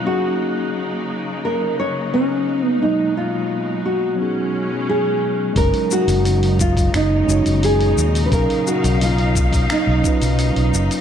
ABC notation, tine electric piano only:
X:1
M:4/4
L:1/8
Q:1/4=87
K:F#
V:1 name="Tine electric piano"
[F,A,CDG]8 | [F,G,A,B,D]4 [F,B,CDG]4 | [F,G,CDA]4- [F,G,CDA] [G,CDFc]3 | [F,CDAe]4- [F,CDAe] [F,CDEB]3 |]